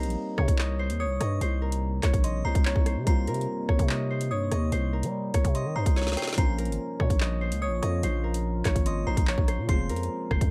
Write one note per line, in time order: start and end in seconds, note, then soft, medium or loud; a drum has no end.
0.00 6.34 C3 medium
0.00 3.02 G3 medium
0.00 6.34 G3 medium
0.00 3.02 A#3 medium
0.00 9.65 A#3 medium
0.00 3.03 C4 medium
0.00 3.04 D#4 medium
0.00 6.34 D#4 loud
0.00 1.61 A#4 medium
0.00 0.44 C5 loud
0.00 0.51 D#5 medium
0.00 0.59 F5 medium
0.00 0.15 A#5 loud
0.00 closed hi-hat medium
0.07 0.17 A#1 loud
0.07 closed hi-hat medium
0.38 0.48 C3 loud
0.38 0.85 C#5 medium
0.38 kick medium
0.38 cross-stick loud
0.48 0.91 C2 loud
0.48 kick medium
0.48 closed hi-hat medium
0.58 1.20 D#5 medium
0.58 clap loud
0.79 1.06 C5 medium
0.89 1.07 D#2 loud
0.89 closed hi-hat medium
1.00 1.48 C#5 medium
1.00 1.20 D#6 medium
1.05 1.20 C2 loud
1.21 1.40 G2 loud
1.21 2.24 D#5 medium
1.21 1.40 C#6 medium
1.21 cross-stick loud
1.21 closed hi-hat medium
1.41 2.01 C2 loud
1.41 2.09 C5 loud
1.41 closed hi-hat medium
1.62 3.27 A#4 medium
1.72 closed hi-hat medium
2.03 2.13 C2 loud
2.03 2.51 C#5 medium
2.03 kick medium
2.03 cross-stick loud
2.03 clap medium
2.03 closed hi-hat medium
2.14 2.43 A#1 loud
2.14 kick medium
2.14 closed hi-hat medium
2.24 3.89 D#5 medium
2.24 2.44 C6 medium
2.24 closed hi-hat medium
2.45 2.55 C2 loud
2.45 2.71 C5 medium
2.45 3.03 A#5 medium
2.55 2.75 C2 loud
2.55 kick loud
2.55 closed hi-hat medium
2.65 2.92 C#5 loud
2.65 clap loud
2.76 2.98 C2 loud
2.76 kick loud
2.86 3.06 C5 medium
2.86 cross-stick loud
2.86 closed hi-hat medium
2.96 3.06 C3 loud
3.05 3.29 C2 loud
3.05 6.33 G3 medium
3.05 6.33 A#3 medium
3.05 6.34 C4 medium
3.05 3.75 C5 loud
3.05 3.46 A#5 loud
3.05 kick loud
3.05 closed hi-hat medium
3.09 6.35 F4 medium
3.27 3.47 C3 loud
3.27 4.93 A#4 medium
3.27 closed hi-hat medium
3.34 closed hi-hat medium
3.41 closed hi-hat medium
3.69 3.78 C2 loud
3.69 4.16 C#5 medium
3.69 kick medium
3.69 cross-stick loud
3.79 4.32 C3 loud
3.79 kick loud
3.79 closed hi-hat medium
3.89 4.51 D#5 medium
3.89 clap loud
4.10 4.37 C5 medium
4.21 closed hi-hat medium
4.31 4.51 G2 loud
4.31 4.78 C#5 medium
4.31 4.50 D#6 medium
4.51 4.71 D#2 loud
4.51 5.55 D#5 medium
4.51 4.71 C#6 medium
4.51 cross-stick loud
4.51 closed hi-hat medium
4.72 5.05 C2 loud
4.72 5.40 C5 loud
4.72 closed hi-hat medium
4.93 6.58 A#4 medium
5.03 5.33 G3 loud
5.03 closed hi-hat medium
5.34 5.44 C2 loud
5.34 5.82 C#5 medium
5.34 kick medium
5.34 cross-stick loud
5.34 closed hi-hat medium
5.45 5.67 C3 loud
5.45 kick medium
5.45 closed hi-hat medium
5.55 7.20 D#5 medium
5.55 5.75 C6 medium
5.55 closed hi-hat medium
5.65 5.75 D#3 loud
5.76 5.85 G2 loud
5.76 6.02 C5 medium
5.76 6.15 A#5 medium
5.86 6.08 C2 loud
5.86 kick loud
5.86 closed hi-hat medium
5.96 6.23 C#5 medium
5.96 snare medium
6.02 snare medium
6.07 6.17 C#2 loud
6.07 snare medium
6.12 snare medium
6.17 6.37 C5 medium
6.17 6.37 G5 medium
6.17 snare medium
6.17 closed hi-hat medium
6.22 snare medium
6.27 snare loud
6.33 9.64 F3 medium
6.33 snare loud
6.37 6.70 A#1 loud
6.37 9.65 C#3 medium
6.37 10.51 F3 medium
6.37 9.64 A#3 medium
6.37 9.65 C#4 medium
6.37 10.51 F4 loud
6.37 9.66 F4 medium
6.37 7.06 C5 loud
6.37 6.77 A#5 loud
6.37 kick loud
6.37 closed hi-hat medium
6.58 8.23 A#4 medium
6.58 closed hi-hat medium
6.65 6.79 G#1 loud
6.65 closed hi-hat medium
6.72 closed hi-hat medium
7.00 7.09 A#2 loud
7.00 7.47 C#5 medium
7.00 kick medium
7.00 cross-stick loud
7.10 7.53 A#1 loud
7.10 kick medium
7.10 closed hi-hat medium
7.20 7.82 D#5 medium
7.20 clap loud
7.41 7.68 C5 medium
7.52 7.69 C#2 loud
7.52 closed hi-hat medium
7.62 8.10 C#5 medium
7.62 7.82 D#6 medium
7.67 7.82 A#1 loud
7.83 8.02 F2 loud
7.83 8.86 D#5 medium
7.83 8.02 C#6 medium
7.83 cross-stick medium
7.83 closed hi-hat medium
8.03 8.63 A#1 loud
8.03 8.71 C5 loud
8.03 closed hi-hat medium
8.24 9.89 A#4 medium
8.34 closed hi-hat medium
8.65 8.75 A#1 loud
8.65 9.13 C#5 medium
8.65 kick medium
8.65 cross-stick loud
8.65 clap medium
8.65 closed hi-hat medium
8.76 9.05 G#1 loud
8.76 kick medium
8.76 closed hi-hat medium
8.86 10.51 D#5 medium
8.86 9.06 C6 medium
8.86 closed hi-hat medium
9.07 9.17 A#1 loud
9.07 9.34 C5 medium
9.07 9.65 A#5 medium
9.17 9.37 A#1 loud
9.17 kick loud
9.17 closed hi-hat medium
9.27 9.54 C#5 medium
9.27 clap loud
9.38 9.60 A#1 loud
9.38 kick loud
9.48 9.69 C5 medium
9.48 cross-stick medium
9.48 closed hi-hat medium
9.58 9.68 A#2 loud
9.67 9.91 F1 loud
9.67 10.51 C3 medium
9.67 10.51 F3 medium
9.67 10.51 G#3 medium
9.67 10.51 C4 medium
9.67 10.30 C5 loud
9.67 10.08 C6 loud
9.67 kick loud
9.67 closed hi-hat medium
9.71 10.51 F4 medium
9.89 10.09 F2 loud
9.89 10.51 A#4 medium
9.89 closed hi-hat medium
9.96 closed hi-hat medium
10.03 closed hi-hat medium
10.31 10.40 F1 loud
10.31 10.51 C5 medium
10.31 kick medium
10.31 cross-stick loud
10.41 10.51 F2 loud
10.41 kick loud
10.41 closed hi-hat medium